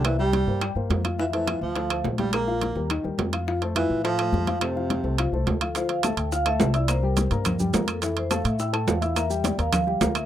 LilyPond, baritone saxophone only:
\new Staff \with { instrumentName = "Baritone saxophone" } { \clef bass \time 4/4 \key f \major \tempo 4 = 211 e8 g2 r4. | e8 e4 f4. r8 g8 | bes2 r2 | r4 e4 f2 |
c2. r4 | \key d \minor r1 | r1 | r1 |
r1 | }